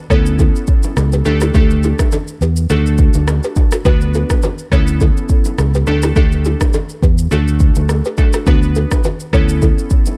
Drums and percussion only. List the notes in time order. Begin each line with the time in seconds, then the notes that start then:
0.10 kick, cross-stick, shaker
0.26 shaker
0.39 kick, high bongo, low conga, shaker
0.56 shaker
0.67 kick, shaker
0.83 low bongo, shaker
0.97 cross-stick, high bongo, shaker
1.12 shaker
1.25 low bongo, shaker
1.41 cross-stick, shaker
1.54 kick, low conga, shaker
1.70 shaker
1.83 low bongo, shaker
1.99 kick, cross-stick, low bongo, shaker
2.12 high bongo, low conga, shaker
2.28 shaker
2.42 shaker
2.56 shaker
2.70 high bongo, low conga, shaker
2.86 shaker
2.98 kick, shaker
3.14 low bongo, shaker
3.28 cross-stick, high bongo, shaker
3.43 shaker
3.56 kick, low bongo, shaker
3.71 cross-stick, shaker
3.85 kick, low conga, shaker
4.01 shaker
4.14 low bongo, shaker
4.30 kick, cross-stick, low bongo, shaker
4.42 high bongo, low conga, shaker
4.58 shaker
4.72 kick, cross-stick, shaker
4.87 shaker
5.01 kick, high bongo, low conga, shaker
5.17 shaker
5.29 kick, shaker
5.45 low bongo, shaker
5.58 cross-stick, high bongo, shaker
5.74 shaker
5.87 low bongo, shaker
6.02 cross-stick, shaker
6.16 kick, low conga, shaker
6.32 shaker
6.45 low bongo, shaker
6.61 kick, cross-stick, low bongo, shaker
6.73 high bongo, low conga, shaker
6.89 shaker
7.03 kick, shaker
7.18 shaker
7.31 high bongo, low conga, shaker
7.48 shaker
7.60 kick, shaker
7.75 low bongo, shaker
7.89 cross-stick, high bongo, shaker
8.05 shaker
8.18 kick, low bongo, shaker
8.33 cross-stick, shaker
8.47 kick, low conga, shaker
8.63 shaker
8.75 low bongo, shaker
8.91 kick, cross-stick, low bongo, shaker
9.04 high bongo, low conga, shaker
9.20 shaker
9.33 kick, cross-stick, shaker
9.49 shaker
9.62 kick, high bongo, low conga, shaker
9.79 shaker
9.90 kick, shaker
10.06 low bongo, shaker